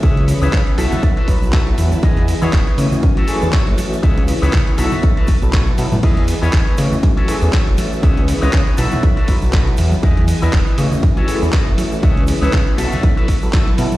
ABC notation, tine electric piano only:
X:1
M:4/4
L:1/16
Q:"Swing 16ths" 1/4=120
K:E
V:1 name="Tine electric piano"
[E,B,CG]3 [E,B,CB]3 [F,B,EA]4 [F,B,EB]2 [F,B,EA]4 | [E,B,Gd]3 [E,B,Bd]3 [E,A,CF]4 [E,A,CG]2 [E,A,CF]4 | G3 [E,B,CB]3 [F,B,EA]4 z [F,B,EA]3 [F,B,EA] z | [E,B,Gd]3 [E,B,Bd]3 [E,A,CF]4 [E,A,CG]2 [E,A,CF]4 |
[E,B,CG]3 [E,B,CB]3 [F,B,EA]4 [F,B,EB]2 [F,B,EA]4 | [E,B,G]3 [E,B,Bd]3 [E,A,CF]4 [E,A,CG]2 [E,A,CF]4 | [E,B,G]3 [E,B,CB]3 [F,B,EA]4 z [F,B,EA]3 [F,B,EA] z |]